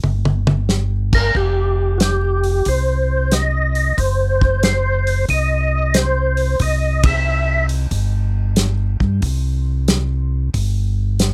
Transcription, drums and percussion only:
0.04 high tom
0.25 high tom
0.47 high tom
0.69 snare
1.13 kick, crash
1.35 kick
2.00 snare, closed hi-hat
2.44 open hi-hat
2.65 kick, open hi-hat
3.31 snare, closed hi-hat
3.75 open hi-hat
3.98 kick, open hi-hat
4.41 kick
4.63 snare, closed hi-hat
5.07 open hi-hat
5.29 kick, open hi-hat
5.94 snare, closed hi-hat
6.37 open hi-hat
6.59 kick, open hi-hat
7.03 kick, ride
7.69 open hi-hat
7.91 kick, open hi-hat
8.56 snare, closed hi-hat
9.00 kick
9.22 kick, open hi-hat
9.88 snare, closed hi-hat
10.54 kick, open hi-hat
11.19 snare, closed hi-hat

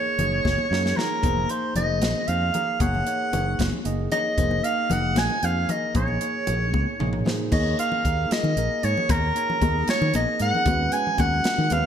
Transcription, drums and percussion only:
0.06 low conga
0.19 closed hi-hat, low conga
0.32 low conga
0.45 kick, snare, high conga
0.58 low conga
0.73 snare
0.86 snare
0.97 snare, low conga
1.10 low conga
1.23 kick, closed hi-hat, high conga
1.37 low conga
1.49 closed hi-hat
1.76 closed hi-hat, low conga
2.02 snare, closed hi-hat, high conga
2.15 low conga
2.28 closed hi-hat
2.42 low conga
2.54 closed hi-hat, low conga
2.80 kick, closed hi-hat, high conga
2.95 low conga
3.07 closed hi-hat
3.33 closed hi-hat, low conga
3.59 kick, snare, closed hi-hat, high conga
3.73 low conga
3.85 closed hi-hat
4.00 low conga
4.12 closed hi-hat, low conga
4.38 kick, closed hi-hat, high conga
4.51 low conga
4.64 closed hi-hat
4.90 closed hi-hat, low conga
5.16 snare, closed hi-hat, high conga
5.30 low conga
5.43 closed hi-hat
5.69 closed hi-hat, low conga
5.95 kick, closed hi-hat, high conga
6.08 low conga
6.21 closed hi-hat
6.34 low conga
6.47 closed hi-hat, low conga
6.74 kick, high conga
7.00 mid tom, low conga
7.13 mid tom, low conga
7.26 snare, low conga
7.52 kick, crash, high conga
7.79 closed hi-hat
7.92 low conga
8.05 kick, closed hi-hat, low conga
8.31 snare, closed hi-hat, low conga
8.44 low conga
8.57 closed hi-hat, low conga
8.71 low conga
8.83 closed hi-hat
8.97 low conga
9.09 kick, closed hi-hat, high conga
9.36 closed hi-hat
9.50 low conga
9.62 kick, closed hi-hat, high conga, low conga
9.88 snare, closed hi-hat, low conga
10.02 low conga
10.14 closed hi-hat, high conga, low conga
10.29 low conga
10.40 closed hi-hat
10.55 low conga
10.66 kick, closed hi-hat, high conga
10.92 closed hi-hat
11.07 low conga
11.18 kick, closed hi-hat, high conga, low conga
11.44 snare, closed hi-hat, low conga
11.59 low conga
11.70 closed hi-hat, high conga, low conga

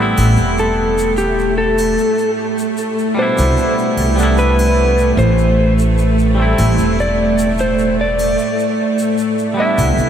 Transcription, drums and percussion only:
0.18 triangle, shaker
0.36 shaker
0.58 shaker
0.98 shaker
1.17 shaker
1.39 shaker
1.78 triangle, shaker
1.98 shaker
2.18 shaker
2.58 shaker
2.77 shaker
2.98 shaker
3.38 triangle, shaker
3.57 shaker
3.78 shaker
3.98 triangle
4.18 shaker
4.37 shaker
4.59 triangle, shaker
4.98 shaker
5.18 shaker
5.38 shaker
5.79 shaker
5.98 shaker
6.19 shaker
6.58 triangle, shaker
6.78 shaker
6.99 shaker
7.38 shaker
7.58 shaker
7.79 shaker
8.19 triangle, shaker
8.38 shaker
8.59 shaker
8.99 shaker
9.18 shaker
9.39 shaker
9.78 triangle, shaker
9.98 shaker

